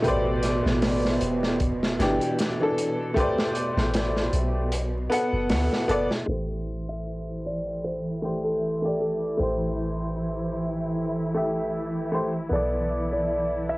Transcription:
0.00 6.29 B2 medium
0.00 1.57 A3 medium
0.00 1.58 G4 medium
0.04 0.61 A1 loud
0.04 1.59 B4 medium
0.04 1.60 C5 medium
0.04 1.60 D5 loud
0.04 kick loud
0.04 closed hi-hat medium
0.43 snare soft
0.43 closed hi-hat medium
0.65 1.18 A1 medium
0.65 snare soft
0.82 snare loud
0.82 open hi-hat medium
1.05 snare medium
1.21 1.96 E1 medium
1.21 closed hi-hat medium
1.43 snare soft
1.60 kick loud
1.60 closed hi-hat medium
1.83 snare medium
1.99 2.19 G1 medium
1.99 2.55 E3 medium
1.99 2.56 D4 medium
1.99 2.56 G4 loud
1.99 snare soft
1.99 closed hi-hat medium
2.21 closed hi-hat soft
2.39 snare medium
2.39 closed hi-hat medium
2.60 3.12 E3 medium
2.60 3.13 D4 medium
2.60 3.14 A4 loud
2.78 closed hi-hat medium
3.14 4.69 A3 medium
3.14 4.70 G4 medium
3.14 4.71 B4 medium
3.14 kick loud
3.14 closed hi-hat medium
3.19 4.71 C5 medium
3.19 4.72 D5 loud
3.38 snare medium
3.55 closed hi-hat medium
3.77 4.30 A1 medium
3.77 snare soft
3.94 snare loud
3.94 closed hi-hat medium
4.16 snare soft
4.33 5.08 B1 medium
4.33 closed hi-hat medium
4.72 closed hi-hat medium
5.10 5.84 B3 medium
5.10 5.85 A4 medium
5.10 5.86 F#5 loud
5.10 closed hi-hat medium
5.33 5.51 F#1 medium
5.50 5.69 D2 loud
5.50 snare loud
5.50 open hi-hat medium
5.73 snare soft
5.88 6.08 F#1 medium
5.88 6.07 B3 loud
5.88 6.07 A4 medium
5.88 6.08 D5 loud
5.88 closed hi-hat medium
6.11 snare soft
6.26 9.36 A1 medium
6.26 13.78 E3 medium
6.26 8.18 A3 medium
6.26 13.78 E4 medium
6.26 8.19 G4 medium
6.26 6.91 C5 medium
6.32 8.21 C5 medium
6.89 7.41 E5 loud
7.46 7.86 D5 medium
7.84 8.47 C5 medium
8.22 8.78 A3 medium
8.22 8.79 G4 medium
8.22 8.80 C5 medium
8.44 8.99 A4 medium
8.82 9.35 A3 medium
8.82 9.36 G4 medium
8.82 9.37 D5 medium
9.00 9.41 A4 medium
9.37 12.48 A1 medium
9.37 11.29 A3 medium
9.37 11.31 G4 medium
9.37 12.08 C5 medium
9.43 11.32 C5 medium
11.34 12.08 A3 medium
11.34 12.09 G4 medium
11.34 12.10 E5 medium
12.12 12.30 A3 medium
12.12 12.31 G4 medium
12.12 12.32 C5 medium
12.49 13.78 B1 medium
12.49 13.78 B3 medium
12.49 13.78 A4 medium
12.49 13.11 D5 medium
12.55 13.78 D5 medium
13.13 13.70 D5 medium
13.69 13.78 E5 loud

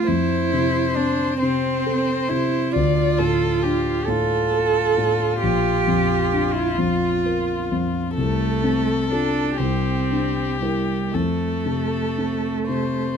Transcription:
0.00 0.12 A3 soft
0.00 0.12 C4 soft
0.00 0.11 A4 soft
0.07 2.70 F2 soft
0.07 0.97 E4 medium
0.07 1.40 C5 soft
0.53 1.25 C3 soft
0.95 1.69 C4 soft
0.95 1.38 D4 soft
1.39 2.13 C3 soft
1.39 2.30 C4 medium
1.39 2.72 C5 soft
1.86 2.57 A4 soft
2.29 2.75 C3 soft
2.29 2.74 E4 medium
2.72 5.39 D2 soft
2.72 4.07 F4 soft
2.72 3.20 D5 soft
3.19 3.90 A2 soft
3.19 3.64 A4 soft
3.63 4.35 D4 soft
3.63 4.11 G4 soft
4.05 4.80 A2 soft
4.05 8.16 F4 soft
4.05 5.41 A4 medium
4.54 5.25 A4 soft
4.98 5.43 A2 soft
5.41 8.13 A#1 soft
5.41 6.55 G4 medium
5.87 6.59 F2 soft
6.33 7.06 D4 soft
6.53 6.79 E4 soft
6.78 7.52 F2 soft
6.78 7.71 F4 medium
7.26 7.99 A#4 soft
7.71 8.17 F2 soft
8.16 9.55 C2 soft
8.16 9.06 A3 soft
8.16 9.56 A4 soft
8.64 9.40 C4 soft
9.11 9.60 D4 medium
9.11 9.56 F4 soft
9.11 9.56 A4 soft
9.57 11.10 C2 soft
9.57 10.60 C4 soft
9.57 11.16 G4 soft
10.11 10.94 D4 soft
10.61 11.14 G3 soft
10.61 11.10 E4 soft
10.61 11.10 A#4 soft
11.13 13.17 F2 soft
11.13 13.17 A3 soft
11.13 12.59 A4 soft
11.66 12.48 C3 soft
12.18 13.00 C4 soft
12.67 13.17 C3 soft
12.67 13.17 C5 soft

